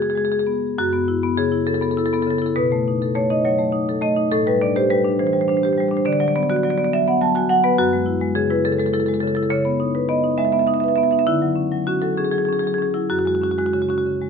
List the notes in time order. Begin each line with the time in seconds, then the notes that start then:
Already playing: C#3 F#4
0.02 G#4
0.10 G#4
0.15 G#3 G#4
0.25 G#4
0.32 G#4
0.39 G#4
0.47 B3
0.78 F#2 F#4
0.93 B3
1.08 E4
1.23 B3
1.38 C#3 G#4
1.52 E4
1.67 C#3 A4
1.74 A4
1.81 B3 A4
1.91 A4
1.97 E4 A4
2.06 A4
2.13 B3 A4
2.22 A4
2.27 C#3 A4
2.38 E4 A4
2.46 A4
2.56 B2 B4
2.72 A3
2.88 D#4
3.02 A4
3.15 A3 C#5
3.30 D#4 D#5
3.45 F#3 C#5
3.59 A3
3.72 D#4
3.89 A4
4.01 A3 D#5
4.17 D#4
4.32 A2 A4
4.47 G3 B4
4.61 D4 D5
4.76 G4 C5
4.90 G3 B4
5.05 D4
5.19 E3 C5
5.27 C5
5.33 G3 C5
5.41 C5
5.48 D4 C5
5.57 C5
5.63 G4 C5
5.73 C5
5.77 G3 C5
5.88 D4 C5
5.97 C5
6.05 D3 D5
6.13 D5
6.20 F#3 D5
6.28 D5
6.36 B3 D5
6.43 D5
6.50 F#4 D5
6.56 D5
6.63 F#3 D5
6.70 D5
6.78 B3 D5
6.84 D5
6.93 F#3 E5
7.08 B3 F#5
7.21 F#3 A5
7.35 F#4 G#5
7.49 F#3 F#5
7.64 B3 B4
7.78 F#2 F#4
7.93 G#3
8.06 E4
8.22 G#3
8.35 C#3 G#4
8.50 E4 B4
8.65 C#3 A4
8.72 A4
8.79 G#3 A4
8.86 A4
8.93 E4 A4
9.00 A4
9.06 G#3 A4
9.14 A4
9.20 C#3 A4
9.28 A4
9.35 E4 A4
9.43 A4
9.50 C#3 C#5
9.65 B3
9.80 D#4
9.95 B4
10.09 B3 D#5
10.24 D#4
10.38 G#3 E5
10.45 E5
10.52 B3 E5
10.59 E5
10.67 D#4 E5
10.74 E5
10.80 B4 E5
10.88 E5
10.96 B3 E5
11.03 E5
11.11 D#4 E5
11.19 E5
11.27 D3 E4
11.42 F#3
11.56 C#4
11.72 F#3
11.87 C#4 F#4
12.02 F#3 A4
12.17 C#4 G#4
12.24 G#4
12.31 F#3 G#4
12.38 G#4
12.45 C#4 G#4
12.53 G#4
12.59 G#4
12.64 F#3 G#4
12.74 G#4
12.79 C#4 G#4
12.94 F#3 E4
13.10 F#2 F#4
13.19 F#4
13.25 G#3 F#4
13.35 F#4
13.41 C#4 F#4
13.51 F#4
13.58 G#3 F#4
13.66 F#4
13.73 C#3 F#4
13.82 F#4
13.89 C#4 F#4
13.98 F#4
14.06 C#3
14.22 G#3